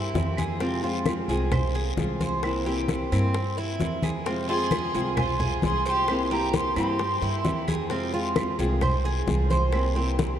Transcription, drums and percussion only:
0.15 high bongo soft
0.15 low bongo medium
0.15 high conga medium
0.15 short guiro medium
0.37 high bongo soft
0.37 high conga medium
0.37 short guiro medium
0.37 claves medium
0.60 high bongo medium
0.60 high conga soft
0.60 long guiro medium
0.83 high bongo soft
0.83 high conga soft
1.06 high bongo medium
1.06 high conga medium
1.06 short guiro medium
1.06 claves medium
1.29 high conga soft
1.29 short guiro medium
1.52 high bongo medium
1.52 high conga soft
1.52 low conga medium
1.52 long guiro medium
1.52 claves medium
1.74 high bongo soft
1.74 high conga soft
1.97 high bongo soft
1.97 low bongo medium
1.97 high conga medium
1.97 short guiro medium
2.21 high bongo soft
2.21 high conga medium
2.21 short guiro medium
2.43 high bongo medium
2.43 high conga soft
2.43 long guiro medium
2.43 claves medium
2.66 high bongo soft
2.66 high conga soft
2.88 high bongo medium
2.88 high conga medium
2.88 short guiro medium
3.12 high conga soft
3.12 short guiro medium
3.12 claves medium
3.34 high bongo medium
3.34 high conga soft
3.34 long guiro medium
3.57 high bongo soft
3.57 high conga soft
3.80 high bongo soft
3.80 low bongo medium
3.80 high conga medium
3.80 short guiro medium
4.02 high bongo soft
4.02 high conga medium
4.02 short guiro medium
4.02 claves medium
4.25 high bongo medium
4.25 high conga soft
4.25 long guiro medium
4.49 high bongo soft
4.49 high conga soft
4.71 high bongo medium
4.71 high conga medium
4.71 short guiro medium
4.71 claves medium
4.94 high conga soft
4.94 short guiro medium
5.17 high bongo medium
5.17 high conga soft
5.17 low conga medium
5.17 long guiro medium
5.17 claves medium
5.40 high bongo soft
5.40 high conga soft
5.40 low conga medium
5.62 high bongo soft
5.62 low bongo medium
5.62 high conga medium
5.62 short guiro medium
5.85 high bongo soft
5.85 short guiro medium
6.08 high bongo medium
6.08 high conga soft
6.08 long guiro medium
6.08 claves medium
6.31 high bongo soft
6.31 high conga soft
6.53 high bongo medium
6.53 high conga loud
6.53 short guiro medium
6.76 high conga soft
6.76 short guiro medium
6.76 claves medium
6.99 high bongo medium
6.99 high conga soft
6.99 long guiro medium
7.22 high bongo soft
7.22 high conga soft
7.45 high bongo soft
7.45 low bongo medium
7.45 high conga medium
7.45 short guiro medium
7.68 high bongo soft
7.68 high conga loud
7.68 short guiro medium
7.68 claves medium
7.90 high bongo medium
7.90 high conga soft
7.90 long guiro medium
8.13 high bongo soft
8.13 high conga soft
8.36 high bongo medium
8.36 high conga loud
8.36 short guiro medium
8.36 claves medium
8.59 high conga soft
8.59 short guiro medium
8.81 high bongo medium
8.81 high conga soft
8.81 low conga medium
8.81 long guiro medium
8.81 claves medium
9.04 high bongo soft
9.04 high conga soft
9.28 high bongo soft
9.28 low bongo medium
9.28 high conga medium
9.28 short guiro medium
9.50 high bongo soft
9.50 high conga medium
9.50 short guiro medium
9.73 high bongo medium
9.73 high conga soft
9.73 long guiro medium
9.73 claves medium
9.96 high bongo soft
9.96 high conga soft
10.19 high bongo medium
10.19 high conga loud
10.19 short guiro medium

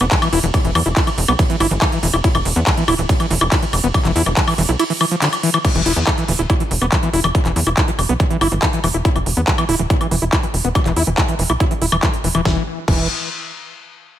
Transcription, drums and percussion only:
0.01 closed hi-hat medium
0.01 high woodblock soft
0.11 kick loud
0.11 clap loud
0.11 closed hi-hat medium
0.11 ride medium
0.22 closed hi-hat medium
0.22 high woodblock medium
0.33 open hi-hat loud
0.43 closed hi-hat medium
0.54 kick loud
0.54 closed hi-hat loud
0.54 ride medium
0.54 high woodblock soft
0.65 closed hi-hat medium
0.75 open hi-hat loud
0.75 high woodblock medium
0.86 closed hi-hat medium
0.96 kick loud
0.96 clap loud
0.96 closed hi-hat medium
0.96 ride medium
1.07 closed hi-hat medium
1.07 high woodblock soft
1.18 open hi-hat loud
1.28 high woodblock medium
1.39 kick loud
1.39 closed hi-hat medium
1.39 ride medium
1.50 closed hi-hat medium
1.60 open hi-hat loud
1.60 high woodblock soft
1.71 closed hi-hat medium
1.82 kick loud
1.82 clap loud
1.82 closed hi-hat medium
1.82 ride medium
1.82 high woodblock medium
1.92 closed hi-hat medium
2.03 open hi-hat loud
2.14 closed hi-hat medium
2.14 high woodblock soft
2.24 kick loud
2.24 closed hi-hat loud
2.24 ride medium
2.35 closed hi-hat medium
2.35 high woodblock medium
2.45 open hi-hat loud
2.56 closed hi-hat medium
2.67 kick loud
2.67 clap loud
2.67 closed hi-hat loud
2.67 ride medium
2.67 high woodblock soft
2.77 closed hi-hat medium
2.88 open hi-hat loud
2.88 high woodblock medium
2.99 closed hi-hat medium
3.09 kick loud
3.09 closed hi-hat loud
3.09 ride medium
3.20 closed hi-hat medium
3.20 high woodblock soft
3.31 open hi-hat loud
3.41 closed hi-hat medium
3.41 high woodblock medium
3.52 kick loud
3.52 clap loud
3.52 closed hi-hat loud
3.52 ride medium
3.62 closed hi-hat medium
3.73 open hi-hat loud
3.73 high woodblock soft
3.84 closed hi-hat medium
3.94 kick loud
3.94 closed hi-hat loud
3.94 ride medium
3.94 high woodblock medium
4.05 clap soft
4.05 closed hi-hat medium
4.16 open hi-hat loud
4.26 closed hi-hat medium
4.26 high woodblock soft
4.37 kick loud
4.37 clap loud
4.37 closed hi-hat loud
4.37 ride medium
4.48 open hi-hat medium
4.48 high woodblock medium
4.58 open hi-hat loud
4.69 closed hi-hat medium
4.79 closed hi-hat loud
4.79 ride medium
4.79 high woodblock soft
4.90 open hi-hat medium
5.01 open hi-hat loud
5.01 high woodblock medium
5.11 closed hi-hat medium
5.22 clap loud
5.22 closed hi-hat medium
5.22 ride medium
5.33 closed hi-hat medium
5.33 high woodblock soft
5.43 open hi-hat loud
5.54 closed hi-hat medium
5.54 high woodblock medium
5.65 kick loud
5.65 closed hi-hat loud
5.65 crash loud
5.65 high woodblock soft
5.75 closed hi-hat medium
5.86 open hi-hat loud
5.96 closed hi-hat medium
6.07 kick loud
6.07 clap loud
6.07 closed hi-hat loud
6.07 high woodblock medium
6.18 closed hi-hat medium
6.28 open hi-hat loud
6.39 closed hi-hat medium
6.50 kick loud
6.50 closed hi-hat medium
6.50 high woodblock soft
6.60 closed hi-hat medium
6.71 open hi-hat loud
6.82 closed hi-hat medium
6.82 high woodblock soft
6.92 kick loud
6.92 clap loud
6.92 closed hi-hat loud
7.03 closed hi-hat medium
7.13 open hi-hat loud
7.24 closed hi-hat medium
7.24 high woodblock medium
7.35 kick loud
7.35 closed hi-hat loud
7.45 clap soft
7.45 closed hi-hat medium
7.56 open hi-hat loud
7.67 closed hi-hat medium
7.67 high woodblock soft
7.77 kick loud
7.77 clap loud
7.77 closed hi-hat medium
7.88 closed hi-hat medium
7.99 open hi-hat loud
7.99 high woodblock soft
8.09 closed hi-hat medium
8.20 kick loud
8.20 closed hi-hat medium
8.31 closed hi-hat medium
8.41 open hi-hat loud
8.41 high woodblock medium
8.52 closed hi-hat medium
8.62 kick loud
8.62 clap loud
8.62 closed hi-hat medium
8.73 closed hi-hat medium
8.84 open hi-hat loud
8.84 high woodblock soft
8.94 closed hi-hat medium
9.05 kick loud
9.05 closed hi-hat medium
9.16 closed hi-hat medium
9.16 high woodblock soft
9.26 open hi-hat loud
9.37 closed hi-hat medium
9.48 kick loud
9.48 clap loud
9.48 closed hi-hat medium
9.58 closed hi-hat medium
9.58 high woodblock medium
9.69 open hi-hat loud
9.79 closed hi-hat medium
9.90 kick loud
9.90 closed hi-hat medium
10.01 closed hi-hat soft
10.01 high woodblock soft
10.11 open hi-hat loud
10.22 closed hi-hat medium
10.33 kick loud
10.33 clap loud
10.33 closed hi-hat medium
10.33 high woodblock soft
10.43 closed hi-hat medium
10.54 open hi-hat loud
10.65 closed hi-hat medium
10.75 kick loud
10.75 closed hi-hat medium
10.75 high woodblock medium
10.86 clap soft
10.86 closed hi-hat medium
10.96 open hi-hat loud
11.07 closed hi-hat soft
11.18 kick loud
11.18 clap loud
11.18 closed hi-hat medium
11.18 high woodblock soft
11.28 closed hi-hat medium
11.39 open hi-hat loud
11.50 closed hi-hat soft
11.50 high woodblock soft
11.60 kick loud
11.60 closed hi-hat medium
11.71 closed hi-hat medium
11.82 open hi-hat loud
11.92 closed hi-hat soft
11.92 high woodblock medium
12.03 kick loud
12.03 clap loud
12.03 closed hi-hat medium
12.13 closed hi-hat soft
12.24 open hi-hat loud
12.35 closed hi-hat medium
12.35 high woodblock soft
12.45 kick loud
12.45 snare medium
12.88 kick loud
12.88 crash medium

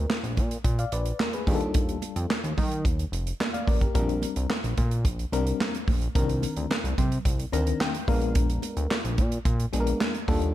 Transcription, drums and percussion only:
0.10 snare loud
0.10 clap medium
0.10 high conga medium
0.24 closed hi-hat soft
0.37 kick medium
0.37 closed hi-hat medium
0.37 muted conga medium
0.51 closed hi-hat medium
0.64 kick loud
0.64 closed hi-hat medium
0.79 closed hi-hat soft
0.92 closed hi-hat medium
1.06 closed hi-hat medium
1.20 snare loud
1.20 clap medium
1.20 high conga medium
1.33 closed hi-hat medium
1.47 kick loud
1.47 open hi-hat medium
1.47 high conga medium
1.61 closed hi-hat soft
1.74 kick loud
1.74 closed hi-hat loud
1.74 muted conga medium
1.89 closed hi-hat soft
2.02 closed hi-hat medium
2.02 muted conga soft
2.16 closed hi-hat medium
2.30 snare loud
2.30 clap medium
2.30 high conga medium
2.44 closed hi-hat soft
2.58 kick medium
2.58 open hi-hat medium
2.58 muted conga soft
2.58 low conga medium
2.72 closed hi-hat medium
2.85 kick loud
2.85 closed hi-hat medium
2.99 closed hi-hat medium
3.13 closed hi-hat medium
3.27 closed hi-hat medium
3.40 snare loud
3.40 clap medium
3.40 high conga medium
3.54 closed hi-hat medium
3.54 high conga soft
3.68 kick loud
3.68 open hi-hat medium
3.68 high conga medium
3.81 kick medium
3.81 closed hi-hat soft
3.95 kick loud
3.95 closed hi-hat loud
3.95 muted conga medium
4.09 closed hi-hat soft
4.22 closed hi-hat medium
4.22 muted conga soft
4.36 closed hi-hat soft
4.50 snare loud
4.50 clap medium
4.50 high conga medium
4.64 closed hi-hat soft
4.77 kick medium
4.77 closed hi-hat medium
4.77 muted conga medium
4.91 closed hi-hat medium
5.05 kick loud
5.05 closed hi-hat medium
5.19 closed hi-hat soft
5.32 closed hi-hat medium
5.32 muted conga soft
5.47 closed hi-hat medium
5.60 snare loud
5.60 clap medium
5.60 high conga medium
5.75 closed hi-hat medium
5.88 kick loud
5.88 open hi-hat medium
5.88 high conga medium
6.02 closed hi-hat soft
6.15 kick loud
6.15 closed hi-hat medium
6.15 muted conga medium
6.29 closed hi-hat medium
6.42 closed hi-hat medium
6.42 muted conga medium
6.57 closed hi-hat soft
6.71 snare loud
6.71 clap medium
6.71 high conga medium
6.85 closed hi-hat soft
6.98 kick medium
6.98 closed hi-hat medium
6.98 muted conga medium
6.98 low conga medium
7.12 closed hi-hat medium
7.25 kick loud
7.25 closed hi-hat loud
7.39 closed hi-hat medium
7.52 closed hi-hat medium
7.52 muted conga soft
7.67 closed hi-hat medium
7.81 snare loud
7.81 clap medium
7.81 high conga medium
7.94 closed hi-hat medium
8.08 kick loud
8.08 open hi-hat medium
8.08 high conga medium
8.22 closed hi-hat soft
8.35 kick loud
8.35 closed hi-hat loud
8.35 muted conga medium
8.50 closed hi-hat medium
8.62 closed hi-hat medium
8.62 muted conga soft
8.77 closed hi-hat soft
8.91 snare loud
8.91 clap medium
8.91 high conga medium
9.05 closed hi-hat soft
9.18 kick medium
9.18 closed hi-hat medium
9.18 muted conga medium
9.32 closed hi-hat medium
9.45 kick loud
9.45 closed hi-hat medium
9.60 closed hi-hat soft
9.73 closed hi-hat medium
9.73 muted conga soft
9.87 closed hi-hat medium
10.01 snare loud
10.01 clap medium
10.01 high conga medium
10.15 closed hi-hat soft
10.28 kick loud
10.28 open hi-hat medium
10.28 high conga medium
10.42 closed hi-hat soft

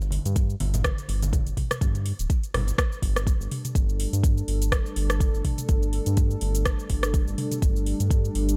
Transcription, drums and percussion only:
0.01 muted conga medium
0.01 cabasa soft
0.10 open hi-hat medium
0.10 high conga medium
0.26 closed hi-hat soft
0.26 cabasa medium
0.36 kick loud
0.36 closed hi-hat medium
0.36 muted conga soft
0.36 cabasa medium
0.50 cabasa soft
0.60 open hi-hat medium
0.60 high conga loud
0.74 closed hi-hat soft
0.74 muted conga medium
0.74 low conga medium
0.74 cabasa medium
0.84 kick loud
0.84 cross-stick loud
0.84 closed hi-hat medium
0.84 high conga medium
0.84 cabasa medium
0.98 closed hi-hat soft
0.98 cabasa soft
1.09 open hi-hat medium
1.09 muted conga soft
1.22 closed hi-hat soft
1.22 high conga medium
1.22 cabasa medium
1.33 kick loud
1.33 closed hi-hat medium
1.33 high conga medium
1.33 low conga loud
1.33 cabasa medium
1.47 closed hi-hat soft
1.47 cabasa soft
1.57 kick medium
1.57 mid tom medium
1.57 open hi-hat medium
1.57 muted conga soft
1.57 high conga medium
1.71 cross-stick medium
1.71 closed hi-hat soft
1.71 mid tom medium
1.71 cabasa medium
1.81 kick loud
1.81 closed hi-hat medium
1.81 high conga medium
1.81 cabasa medium
1.95 closed hi-hat soft
1.95 muted conga medium
1.95 cabasa soft
2.06 open hi-hat medium
2.19 closed hi-hat soft
2.19 cabasa medium
2.30 kick loud
2.30 closed hi-hat medium
2.30 muted conga soft
2.30 cabasa medium
2.44 closed hi-hat soft
2.44 cabasa soft
2.54 cross-stick medium
2.54 open hi-hat medium
2.54 high conga medium
2.54 low conga loud
2.67 closed hi-hat soft
2.67 muted conga medium
2.67 cabasa medium
2.78 kick loud
2.78 cross-stick loud
2.78 closed hi-hat medium
2.78 cabasa medium
2.92 cabasa soft
3.02 kick medium
3.02 open hi-hat medium
3.16 cross-stick medium
3.16 closed hi-hat soft
3.16 cabasa medium
3.27 kick loud
3.27 closed hi-hat medium
3.27 cabasa medium
3.41 cabasa soft
3.51 mid tom medium
3.51 open hi-hat medium
3.65 closed hi-hat soft
3.65 mid tom medium
3.65 cabasa medium
3.75 kick loud
3.75 closed hi-hat medium
3.75 cabasa medium
3.89 cabasa soft
4.00 open hi-hat loud
4.13 closed hi-hat soft
4.13 cabasa medium
4.24 kick loud
4.24 closed hi-hat medium
4.24 cabasa medium
4.38 cabasa soft
4.48 open hi-hat medium
4.62 closed hi-hat soft
4.62 cabasa medium
4.72 kick loud
4.72 cross-stick loud
4.72 closed hi-hat medium
4.72 cabasa medium
4.86 cabasa soft
4.96 open hi-hat medium
5.10 cross-stick medium
5.10 closed hi-hat soft
5.10 cabasa medium
5.20 kick loud
5.20 closed hi-hat medium
5.20 cabasa medium
5.34 cabasa soft
5.45 kick medium
5.45 mid tom medium
5.45 open hi-hat medium
5.58 closed hi-hat soft
5.58 mid tom medium
5.58 cabasa medium
5.69 kick loud
5.69 closed hi-hat medium
5.69 cabasa medium
5.83 cabasa soft
5.93 open hi-hat medium
6.06 closed hi-hat soft
6.06 cabasa medium
6.17 kick loud
6.17 closed hi-hat medium
6.17 cabasa medium
6.31 cabasa soft
6.41 open hi-hat medium
6.55 closed hi-hat soft
6.55 cabasa medium
6.66 kick loud
6.66 cross-stick loud
6.66 closed hi-hat medium
6.66 cabasa medium
6.79 cabasa soft
6.90 kick medium
6.90 open hi-hat medium
7.03 cross-stick medium
7.03 closed hi-hat soft
7.03 cabasa medium
7.14 kick loud
7.14 closed hi-hat medium
7.14 cabasa medium
7.28 cabasa soft
7.38 mid tom medium
7.38 open hi-hat medium
7.52 closed hi-hat soft
7.52 mid tom medium
7.52 cabasa medium
7.62 kick loud
7.62 closed hi-hat medium
7.62 cabasa medium
7.76 cabasa soft
7.86 open hi-hat medium
8.00 closed hi-hat soft
8.00 cabasa medium
8.11 kick loud
8.11 closed hi-hat medium
8.11 cabasa medium
8.25 cabasa soft
8.35 open hi-hat medium
8.49 closed hi-hat soft
8.49 cabasa medium

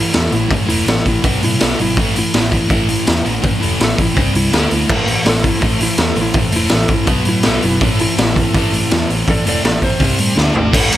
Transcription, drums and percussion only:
0.13 snare loud
0.13 open hi-hat medium
0.32 open hi-hat medium
0.51 kick loud
0.51 open hi-hat medium
0.69 open hi-hat medium
0.88 snare loud
0.88 open hi-hat medium
1.06 kick medium
1.06 open hi-hat medium
1.24 kick loud
1.24 open hi-hat medium
1.42 open hi-hat medium
1.60 snare loud
1.60 open hi-hat medium
1.79 open hi-hat medium
1.97 kick loud
1.97 open hi-hat medium
2.16 open hi-hat medium
2.34 snare loud
2.34 open hi-hat medium
2.52 kick medium
2.52 open hi-hat medium
2.70 kick loud
2.70 open hi-hat medium
2.89 open hi-hat medium
3.07 snare loud
3.07 open hi-hat medium
3.26 open hi-hat medium
3.44 kick loud
3.44 open hi-hat medium
3.62 open hi-hat medium
3.80 snare loud
3.80 open hi-hat medium
3.98 kick medium
3.98 open hi-hat medium
4.17 kick loud
4.17 open hi-hat medium
4.35 open hi-hat medium
4.53 snare loud
4.53 open hi-hat medium
4.71 open hi-hat medium
4.89 kick loud
4.89 crash loud
5.07 open hi-hat medium
5.25 snare loud
5.25 open hi-hat medium
5.44 kick medium
5.44 open hi-hat medium
5.61 kick loud
5.61 open hi-hat medium
5.80 open hi-hat medium
5.98 snare loud
5.98 open hi-hat medium
6.16 open hi-hat medium
6.33 kick loud
6.33 open hi-hat medium
6.52 open hi-hat medium
6.69 snare loud
6.69 open hi-hat medium
6.88 kick loud
6.88 open hi-hat medium
7.07 kick loud
7.07 open hi-hat medium
7.25 open hi-hat medium
7.43 snare loud
7.43 open hi-hat medium
7.62 open hi-hat medium
7.81 kick loud
7.81 open hi-hat medium
7.99 open hi-hat medium
8.18 snare loud
8.18 open hi-hat medium
8.36 kick medium
8.36 open hi-hat medium
8.54 kick loud
8.54 open hi-hat medium
8.73 open hi-hat medium
8.91 snare loud
8.91 open hi-hat medium
9.10 open hi-hat medium
9.28 kick loud
9.28 open hi-hat medium
9.46 open hi-hat medium
9.64 snare loud
9.64 open hi-hat medium
9.82 kick medium
9.82 open hi-hat medium
10.00 kick loud
10.00 open hi-hat medium
10.18 open hi-hat medium
10.37 snare medium
10.55 floor tom medium
10.73 kick loud
10.73 crash loud
10.92 ride medium

